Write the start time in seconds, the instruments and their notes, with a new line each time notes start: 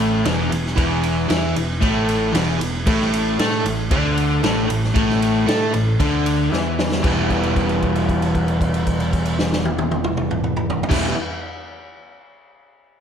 Already playing: picked electric bass A1, overdriven electric guitar A2 A3
0.25 picked electric bass E1, overdriven electric guitar E2 E3, snare, ride
0.50 picked electric bass E1, overdriven electric guitar E2, ride
0.66 snare
0.77 picked electric bass E1, overdriven electric guitar E2 E3, kick, ride
1.03 ride
1.29 picked electric bass E2, overdriven electric guitar E3 E4, snare, ride
1.55 picked electric bass E1, overdriven electric guitar E2, ride
1.81 picked electric bass A1, overdriven electric guitar A2 A3, kick, ride
2.09 ride
2.32 picked electric bass E1, overdriven electric guitar E2 E3, snare, ride
2.59 picked electric bass E1, overdriven electric guitar E2, ride
2.86 picked electric bass A1, overdriven electric guitar A2 A3, kick, ride
3.01 snare
3.13 ride
3.39 picked electric bass A2, overdriven electric guitar A3 A4, snare, ride
3.65 picked electric bass A1, overdriven electric guitar A2, ride
3.91 picked electric bass D2, overdriven electric guitar D3 D4, kick, ride
4.17 ride
4.43 picked electric bass A1, overdriven electric guitar A2 A3, snare, ride
4.69 picked electric bass A1, overdriven electric guitar A2, ride
4.84 snare
4.94 picked electric bass A1, overdriven electric guitar A2 A3, kick, ride
5.10 snare
5.22 ride
5.46 picked electric bass A2, overdriven electric guitar A3 A4, snare, ride
5.73 picked electric bass A1, overdriven electric guitar A2, ride
5.99 picked electric bass D2, overdriven electric guitar D3 D4, kick, ride
6.26 ride
6.52 picked electric bass E2, overdriven electric guitar E3 E4, snare
6.79 snare
6.92 snare
7.02 picked electric bass E1, overdriven electric guitar E3 G3 B3, kick, crash
7.06 overdriven electric guitar E4
7.30 kick, crash
7.43 crash
7.56 kick, crash
7.69 crash
7.82 kick, crash
7.96 crash
8.09 kick, crash
8.22 crash
8.35 kick, crash
8.48 crash
8.61 kick, crash
8.74 crash
8.87 kick, crash
9.00 crash
9.13 kick, crash
9.25 crash
9.39 snare
9.53 snare
9.65 high tom
9.79 high tom
9.91 high tom
10.04 mid tom
10.17 mid tom
10.31 mid tom
10.44 mid tom
10.57 mid tom
10.70 floor tom
10.83 floor tom
10.89 picked electric bass E1, overdriven electric guitar E3 G3 B3 E4, kick, snare, crash